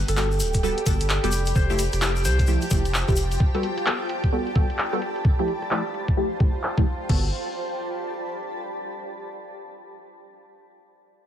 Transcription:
Already playing: ambient pad G4 D5, string machine G4 G5, harp B4 E5
0.00 ambient pad B5
0.08 sub bass G1, harp A4, cross-stick, closed hi-hat, shaker
0.17 synth stab G3 B3 F#4 A4, clap, shaker
0.31 ambient pad A5, shaker
0.40 sub bass D1, open hi-hat, shaker
0.53 kick, closed hi-hat, shaker
0.63 synth stab G3 B3 F#4 A4, harp A4, shaker
0.78 closed hi-hat
0.86 sub bass G1, synth stab G3 B3 F#4 A4, harp A4, kick, open hi-hat, shaker
1.00 closed hi-hat, shaker
1.09 clap, shaker
1.24 sub bass F1, synth stab G3 B3 F#4 A4, harp G4, closed hi-hat, shaker
1.32 ambient pad F4, open hi-hat, shaker
1.46 closed hi-hat, shaker
1.55 sub bass F1, harp C5, ambient pad C5 G5, kick, shaker
1.70 synth stab F3 A3 E4 G4, shaker
1.79 open hi-hat, shaker
1.92 sub bass F1, cross-stick, closed hi-hat, shaker
2.02 synth stab F3 A3 E4 G4, clap, shaker
2.16 shaker
2.25 sub bass C2, harp C5, open hi-hat, shaker
2.39 kick, closed hi-hat, shaker
2.47 synth stab F3 A3 E4 G4, shaker
2.61 closed hi-hat, shaker
2.71 sub bass F1, synth stab F3 A3 E4 G4, kick, open hi-hat, shaker
2.85 closed hi-hat, shaker
2.94 clap, shaker
3.08 sub bass F1, synth stab F3 A3 E4 G4, kick, closed hi-hat, shaker
3.16 open hi-hat, shaker
3.31 closed hi-hat, shaker
3.40 ambient pad G4, kick
3.55 synth stab G3 B3 F#4 A4, ambient pad D5, open hi-hat
3.63 open hi-hat
3.78 cross-stick, closed hi-hat
3.86 synth stab G3 B3 F#4 A4, clap
4.09 open hi-hat
4.14 ambient pad B5
4.24 kick, closed hi-hat
4.33 synth stab G3 B3 F#4 A4
4.47 closed hi-hat
4.55 synth stab G3 B3 F#4 A4, kick, open hi-hat
4.70 closed hi-hat
4.79 clap
4.93 synth stab G3 B3 F#4 A4, closed hi-hat
5.02 ambient pad F4, open hi-hat
5.16 closed hi-hat
5.22 ambient pad C5, kick
5.39 synth stab F3 A3 E4 G4
5.48 open hi-hat
5.62 cross-stick, closed hi-hat
5.71 synth stab F3 A3 E4 G4, clap
5.94 open hi-hat
6.08 kick, closed hi-hat
6.17 synth stab F3 A3 E4 G4
6.31 closed hi-hat
6.40 synth stab F3 A3 E4 G4, kick
6.55 closed hi-hat
6.63 clap, open hi-hat
6.78 synth stab F3 A3 E4 G4, kick
6.86 open hi-hat
7.01 closed hi-hat
7.09 sub bass G1, synth stab G3 B3 F#4 A4, ambient pad G4, kick, crash
7.18 ambient pad D5
7.25 ambient pad A5
7.31 ambient pad B5

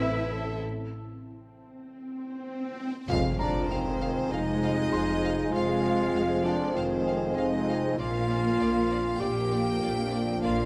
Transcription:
Already playing: double bass section A1, viola section C4 A4, ambient pad C4 E4 A5, cello section E4, violin section E5
0.02 violin section B4, grand piano E5 E6
0.32 violin section A4
0.63 swell
3.08 double bass section F1, cello section F2, trombone section F2 G#3, french horn section C4 F4, ambient pad F4 C5 G#5, violin section F5, impact
3.38 viola section F3, clarinet D4, violin section D5 F5, grand piano A#5
3.69 double bass section F1, cello section F2, viola section D#3, clarinet C4, violin section C5 F5
4.01 violin section F5
4.31 double bass section F1, cello section F2, viola section G#3, clarinet D#4, violin section D#5 F5
4.63 violin section F5
4.92 double bass section F1, cello section F2, violin section F5, grand piano C6
5.24 violin section F5
5.52 double bass section F1, cello section F2, viola section G#3, clarinet F4, violin section F5
5.85 violin section F5
6.14 double bass section F1, cello section F2, violin section F5
6.44 viola section F3, clarinet D4, violin section D5 F5
6.75 double bass section F1, cello section F2, viola section D#3, clarinet C4, violin section C5 F5
7.07 violin section F5
7.36 double bass section F1, cello section F2, viola section G#3, clarinet D#4, violin section D#5 F5
7.69 violin section F5
7.97 double bass section A#1, trombone section F2 F3, cello section A#2, viola section A#3, french horn section D4 F4, clarinet F4, ambient pad F4 D5 F5, violin section D5 F5
8.30 violin section D5
8.60 double bass section A#1, cello section A#2, violin section D5
8.91 violin section D5
9.20 double bass section A#1, cello section A#2, viola section A#3, clarinet G4, violin section D5 G5
9.52 violin section D5
9.82 double bass section A#1, cello section A#2, violin section D5
10.12 violin section D5
10.43 double bass section A#1, cello section A#2, viola section A#3, clarinet F4, violin section D5 F5

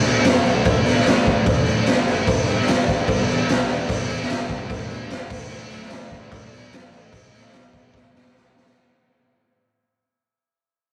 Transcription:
Already playing: overdriven electric guitar D3 F#3 A3 D4, lead electric guitar D5
0.04 picked electric bass B2, crash
0.21 picked electric bass F#2, overdriven electric guitar D3, lead electric guitar B4, crash
0.26 overdriven electric guitar F#3 A3, snare
0.30 overdriven electric guitar D4, lead electric guitar C#5
0.45 picked electric bass B1, overdriven electric guitar A3 D4, crash
0.50 overdriven electric guitar F#3
0.61 lead electric guitar D5
0.65 picked electric bass D2, overdriven electric guitar D3 F#3 A3, kick, crash
0.70 overdriven electric guitar D4, lead electric guitar E5
0.82 picked electric bass B2, overdriven electric guitar D4, lead electric guitar D5, crash
0.87 overdriven electric guitar F#3 A3, snare
0.98 snare
1.06 picked electric bass D2, overdriven electric guitar D3 F#3 A3, snare, crash
1.11 overdriven electric guitar D4
1.26 picked electric bass D2, overdriven electric guitar A3 D4, kick, crash
1.31 overdriven electric guitar F#3
1.46 picked electric bass B1, kick, crash
1.66 picked electric bass A2, crash
1.86 picked electric bass D2, overdriven electric guitar D3 F#3 A3, snare, crash
1.91 overdriven electric guitar D4
2.05 picked electric bass F#1, overdriven electric guitar A3 D4, crash
2.10 overdriven electric guitar F#3
2.23 overdriven electric guitar G2, lead electric guitar E5
2.27 picked electric bass G1, overdriven electric guitar D3 G3 B3, kick, crash
2.31 overdriven electric guitar D4
2.47 picked electric bass G1, overdriven electric guitar B3 D4, crash
2.52 overdriven electric guitar G3
2.60 snare
2.64 picked electric bass G1, overdriven electric guitar G2, lead electric guitar D5, crash
2.69 overdriven electric guitar D3 G3 B3 D4, snare
2.84 lead electric guitar D5
2.88 picked electric bass G1, overdriven electric guitar B3 D4, kick, crash
2.93 overdriven electric guitar G3
3.05 picked electric bass G1, lead electric guitar D5, kick, crash
3.28 picked electric bass E2, crash
3.46 overdriven electric guitar D3, lead electric guitar B4, crash
3.50 picked electric bass B1, overdriven electric guitar G3 B3 D4, snare
3.67 overdriven electric guitar D4, lead electric guitar D5, crash
3.71 picked electric bass E1, overdriven electric guitar G3 B3
3.88 picked electric bass G1, overdriven electric guitar G2 D3 G3 B3, lead electric guitar D5, kick, crash
3.93 overdriven electric guitar D4
4.08 picked electric bass E2, overdriven electric guitar B3 D4, lead electric guitar E5, crash
4.14 overdriven electric guitar G3
4.22 snare
4.29 picked electric bass G1, overdriven electric guitar G2 D3 G3, snare, crash
4.33 overdriven electric guitar B3 D4
4.49 picked electric bass G1, overdriven electric guitar B3 D4, kick, crash
4.54 overdriven electric guitar G3
4.70 picked electric bass E1, kick, crash
4.90 picked electric bass D2, crash
5.10 picked electric bass G1, overdriven electric guitar D3 G3 B3, snare, crash
5.15 overdriven electric guitar D4
5.30 picked electric bass D2, overdriven electric guitar F#3 A3 D4, kick, crash
5.34 overdriven electric guitar D3
5.50 picked electric bass D2, overdriven electric guitar D3 F#3, lead electric guitar E5, crash
5.55 overdriven electric guitar A3 D4
5.70 picked electric bass D2, overdriven electric guitar A3 D4, crash
5.75 overdriven electric guitar F#3
5.82 snare
5.90 picked electric bass D2, overdriven electric guitar D3 F#3 A3, lead electric guitar D5, snare, crash
5.95 overdriven electric guitar D4
6.11 picked electric bass D2, overdriven electric guitar A3 D4, kick, crash
6.16 overdriven electric guitar F#3
6.31 picked electric bass D2, lead electric guitar D5, kick, crash
6.51 picked electric bass B2, crash
6.71 picked electric bass F#2, overdriven electric guitar D3 F#3 A3, snare, crash
6.76 overdriven electric guitar D4
6.90 picked electric bass A1, overdriven electric guitar D4, crash
6.94 overdriven electric guitar F#3 A3, lead electric guitar D#5
7.11 picked electric bass B1, overdriven electric guitar B2 F#3 B3, kick, crash
7.15 overdriven electric guitar D#4
7.32 picked electric bass A2, overdriven electric guitar B3 D#4, crash
7.36 overdriven electric guitar F#3, snare
7.45 snare
7.51 picked electric bass B1, overdriven electric guitar B2 F#3 B3, snare, crash
7.56 overdriven electric guitar D#4
7.71 picked electric bass B1, overdriven electric guitar B3 D#4, kick, crash
7.76 overdriven electric guitar F#3
7.94 picked electric bass A1, kick, snare
8.13 picked electric bass F#2, snare
8.26 snare
8.33 picked electric bass B1, overdriven electric guitar B2 F#3 B3, snare
8.38 overdriven electric guitar D#4
8.53 picked electric bass B1, overdriven electric guitar B3 D#4, snare
8.58 overdriven electric guitar F#3
8.66 snare

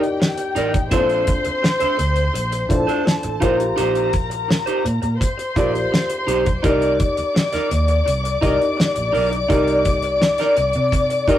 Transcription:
Already playing: fingered electric bass C3, grand piano D#4 G4 A#4 D5, string section G4 G5
0.02 muted clean electric guitar stroke, closed hi-hat
0.20 muted clean electric guitar stroke, snare
0.38 muted clean electric guitar stroke, closed hi-hat
0.55 fingered electric bass A1, clean electric guitar D#4 A#4 D5, closed hi-hat
0.73 muted clean electric guitar stroke, kick, closed hi-hat
0.91 fingered electric bass A#1, grand piano C4 F4 A4 C5, clean electric guitar D4 A4 C5, string section C5 C6, kick, closed hi-hat
0.97 grand piano D4
1.10 closed hi-hat
1.27 kick, closed hi-hat
1.44 muted clean electric guitar stroke, muted fingered electric bass stroke, closed hi-hat
1.62 muted clean electric guitar stroke, snare
1.80 clean electric guitar D4 A4 C5, muted fingered electric bass stroke, closed hi-hat
1.98 fingered electric bass D2, muted clean electric guitar stroke, closed hi-hat
2.16 muted clean electric guitar stroke, closed hi-hat
2.34 fingered electric bass A#1, muted clean electric guitar stroke, closed hi-hat
2.52 muted clean electric guitar stroke, closed hi-hat
2.69 fingered electric bass A#1, grand piano D4 F4 A4 C5, string section A4 A5, kick, closed hi-hat
2.87 clean electric guitar D4 A4 C5, closed hi-hat
3.05 muted clean electric guitar stroke, snare
3.23 fingered electric bass A1, muted clean electric guitar stroke, closed hi-hat
3.40 fingered electric bass A#1, clean electric guitar D#4 G4 C5, grand piano F4 G4 A#4 C5, string section A#4 A#5, kick, closed hi-hat
3.59 muted clean electric guitar stroke, closed hi-hat
3.76 fingered electric bass A#1, clean electric guitar D#4 G4 C5, closed hi-hat
3.95 closed hi-hat
4.13 kick, closed hi-hat
4.30 muted clean electric guitar stroke, closed hi-hat
4.48 muted clean electric guitar stroke, snare
4.66 clean electric guitar D#4 G4 C5, closed hi-hat
4.84 fingered electric bass A#2, muted clean electric guitar stroke, closed hi-hat
5.02 fingered electric bass A#2, muted clean electric guitar stroke, closed hi-hat
5.20 string section C5 C6, muted clean electric guitar stroke, kick, closed hi-hat
5.38 muted clean electric guitar stroke, closed hi-hat
5.56 fingered electric bass A#1, clean electric guitar D#4 G4 D5, grand piano F4 G4 A#4 D5, kick, closed hi-hat
5.74 muted clean electric guitar stroke, closed hi-hat
5.92 muted clean electric guitar stroke, snare
6.09 muted clean electric guitar stroke, closed hi-hat
6.27 fingered electric bass B1, clean electric guitar D#4 G4 C5, closed hi-hat
6.45 muted clean electric guitar stroke, kick, closed hi-hat
6.63 fingered electric bass C2, clean electric guitar D#4 A#4 D5, grand piano D#4 G4 A#4 D5, string section D5 D6, kick, closed hi-hat
6.82 closed hi-hat
7.00 kick, closed hi-hat
7.17 muted clean electric guitar stroke, muted fingered electric bass stroke, closed hi-hat
7.34 muted clean electric guitar stroke, snare
7.52 clean electric guitar D#4 A#4 D5, muted fingered electric bass stroke, snare, closed hi-hat
7.71 fingered electric bass D#2, muted clean electric guitar stroke, closed hi-hat
7.88 muted clean electric guitar stroke, closed hi-hat
8.06 fingered electric bass C2, muted clean electric guitar stroke, closed hi-hat
8.24 muted clean electric guitar stroke, closed hi-hat
8.41 fingered electric bass C2, clean electric guitar D#4 A#4 D#5, grand piano D#4 G4 A#4 D5, kick, closed hi-hat
8.59 muted clean electric guitar stroke, closed hi-hat
8.77 muted clean electric guitar stroke, snare
8.95 fingered electric bass A#1, muted clean electric guitar stroke, closed hi-hat
9.12 fingered electric bass B1, clean electric guitar D#4 A#4 D5, open hi-hat
9.30 muted clean electric guitar stroke, closed hi-hat
9.49 fingered electric bass C2, grand piano D#4 G4 A#4 D5, clean electric guitar D#4 A#4 D5, kick, closed hi-hat
9.67 closed hi-hat
9.85 kick, closed hi-hat
10.02 muted clean electric guitar stroke, closed hi-hat
10.21 muted clean electric guitar stroke, snare
10.38 clean electric guitar D#4 A#4 D5, snare, closed hi-hat
10.57 fingered electric bass C2, muted clean electric guitar stroke, closed hi-hat
10.73 fingered electric bass C3, muted clean electric guitar stroke, closed hi-hat
10.92 muted clean electric guitar stroke, kick, closed hi-hat
11.10 muted clean electric guitar stroke, closed hi-hat
11.28 grand piano D#4 G4 A#4 D5, clean electric guitar D#4 A#4 D#5, kick, closed hi-hat

